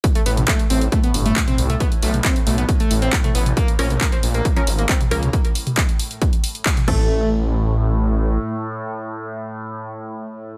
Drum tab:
CC |----------------|----------------|----------------|--------------x-|
HH |xxoxxxoxxxoxxxox|xxoxxxoxxxoxxxox|xxoxxxoxxxoxxxox|xxoxxxoxxxoxxx--|
CP |----x-------x---|----x-------x---|----x-------x---|----x-------x---|
T2 |---o---------o-o|---o---------o-o|---o---------o-o|---o---------o--|
BD |o---o---o---o---|o---o---o---o---|o---o---o---o---|o---o---o---o-o-|

CC |----------------|----------------|
HH |----------------|----------------|
CP |----------------|----------------|
T2 |----------------|----------------|
BD |----------------|----------------|